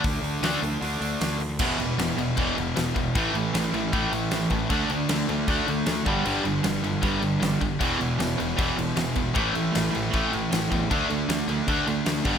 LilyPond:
<<
  \new Staff \with { instrumentName = "Distorted electric guitar" } { \clef bass \time 4/4 \key d \mixolydian \tempo 4 = 155 <d a d'>2 <d a d'>8 <d a d'>4 r8 | <e, b, e>1 | <a, e a>1 | <d a d'>2.~ <d a d'>8 <g, d g>8~ |
<g, d g>2.~ <g, d g>8 r8 | <e, b, e>1 | <a, e a>1 | <d a d'>2.~ <d a d'>8 <g, d g>8 | }
  \new Staff \with { instrumentName = "Distorted electric guitar" } { \clef bass \time 4/4 \key d \mixolydian r4 <d a d'>8 r2 r8 | <e, b, e>8 <e, b,>8 <e, b,>8 <e, b,>8 <e, b, e>8 <e, b,>8 <e, b,>8 <e, b,>8 | <a, e a>8 <a, e>8 <a, e>8 <a, e>8 <a, e a>8 <a, e>8 <a, e>8 <a, e>8 | <d a d'>8 <d a>8 <d a>8 <d a>8 <d a d'>8 <d a>8 <d a>8 <g, d g>8 |
<g, d g>8 <g, d>8 <g, d>8 <g, d>8 <g, d g>8 <g, d>8 <g, d>8 <g, d>8 | <e, b, e>8 <e, b,>8 <e, b,>8 <e, b,>8 <e, b, e>8 <e, b,>8 <e, b,>8 <e, b,>8 | <a, e a>8 <a, e>8 <a, e>8 <a, e>8 <a, e a>8 <a, e>8 <a, e>8 <a, e>8 | <d a d'>8 <d a>8 <d a>8 <d a>8 <d a d'>8 <d a>8 <d a>8 <g, d g>8 | }
  \new Staff \with { instrumentName = "Distorted electric guitar" } { \clef bass \time 4/4 \key d \mixolydian r4 <d a d'>8 r2 r8 | <e, b, e>8 <e, b,>8 <e, b,>8 <e, b,>8 <e, b, e>8 <e, b,>8 <e, b,>8 <e, b,>8 | <a, e a>8 <a, e>8 <a, e>8 <a, e>8 <a, e a>8 <a, e>8 <a, e>8 <a, e>8 | <d a d'>8 <d a>8 <d a>8 <d a>8 <d a d'>8 <d a>8 <d a>8 <g, d g>8 |
<g, d g>8 <g, d>8 <g, d>8 <g, d>8 <g, d g>8 <g, d>8 <g, d>8 <g, d>8 | <e, b, e>8 <e, b,>8 <e, b,>8 <e, b,>8 <e, b, e>8 <e, b,>8 <e, b,>8 <e, b,>8 | <a, e a>8 <a, e>8 <a, e>8 <a, e>8 <a, e a>8 <a, e>8 <a, e>8 <a, e>8 | <d a d'>8 <d a>8 <d a>8 <d a>8 <d a d'>8 <d a>8 <d a>8 <g, d g>8 | }
  \new Staff \with { instrumentName = "Picked electric bass" } { \clef bass \time 4/4 \key d \mixolydian d,8 d,8 d,8 d,8 d,8 d,8 d,4 | e,,8 e,,8 e,,8 e,,8 e,,8 e,,8 e,,8 e,,8 | a,,8 a,,8 a,,8 a,,8 a,,8 a,,8 a,,8 a,,8 | d,8 d,8 d,8 d,8 d,8 d,8 d,8 g,,8 |
g,,8 g,,8 g,,8 g,,8 g,,8 g,,8 g,,8 g,,8 | e,,8 e,,8 e,,8 e,,8 e,,8 e,,8 e,,8 e,,8 | a,,8 a,,8 a,,8 a,,8 a,,8 a,,8 a,,8 e,8 | d,8 d,8 d,8 d,8 d,8 d,8 d,8 g,,8 | }
  \new DrumStaff \with { instrumentName = "Drums" } \drummode { \time 4/4 <hho bd>8 hho8 <hho sn>8 hho8 hho8 hho8 <hho sn>8 hho8 | <cymc bd>8 cymc8 <cymc sn>8 cymc8 <cymc bd>8 cymc8 <cymc sn>8 <cymc bd>8 | <cymc bd>8 cymc8 <cymc sn>8 cymc8 <cymc bd>8 cymc8 <cymc sn>8 <cymc bd>8 | <cymc bd>8 cymc8 <cymc sn>8 cymc8 <cymc bd>8 cymc8 <cymc sn>8 <cymc bd>8 |
cymc8 cymc8 <cymc sn>8 cymc8 <cymc bd>8 cymc8 <cymc sn>8 <cymc bd>8 | <cymc bd>8 cymc8 <cymc sn>8 cymc8 <cymc bd>8 cymc8 <cymc sn>8 <cymc bd>8 | <cymc bd>8 cymc8 <cymc sn>8 cymc8 <cymc bd>8 cymc8 <cymc sn>8 <cymc bd>8 | <cymc bd>8 cymc8 <cymc sn>8 cymc8 <cymc bd>8 cymc8 <cymc sn>8 <cymc bd>8 | }
>>